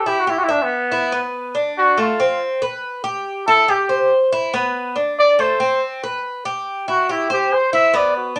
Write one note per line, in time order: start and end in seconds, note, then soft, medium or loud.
0.06 0.27 E4 medium
0.06 0.21 G4 medium
0.20 0.31 F#4 medium
0.27 0.40 E4 medium
0.27 0.48 G4 medium
0.38 0.45 F#4 medium
0.44 0.52 E4 medium
0.48 0.64 D4 medium
0.48 0.90 E5 medium
0.63 1.25 B3 medium
0.92 1.12 E4 medium
1.12 1.54 B3 medium
1.55 1.96 D4 medium
1.78 2.02 F#4 medium
1.98 2.18 A3 medium
1.98 2.42 F4 medium
2.20 2.61 C4 medium
2.62 3.03 B4 medium
3.04 3.45 G4 medium
3.48 3.68 E4 medium
3.48 3.72 A4 loud
3.68 3.89 G4 medium
3.68 4.12 G4 medium
3.89 4.31 C5 medium
4.32 4.53 E4 medium
4.54 4.95 B3 medium
4.96 5.37 D4 medium
5.19 5.42 D5 loud
5.39 5.59 A3 medium
5.39 5.82 C5 medium
5.60 6.01 C4 medium
6.04 6.44 B4 medium
6.45 6.86 G4 medium
6.88 7.08 E4 medium
6.88 7.13 F#4 medium
7.09 7.31 E4 medium
7.09 7.30 G4 medium
7.30 7.55 G4 medium
7.30 7.71 C5 medium
7.54 7.73 C5 medium
7.73 7.93 E4 medium
7.73 7.98 E5 medium
7.94 8.35 B3 medium
7.94 8.16 D5 medium
8.17 8.33 F#4 soft
8.36 8.39 D4 medium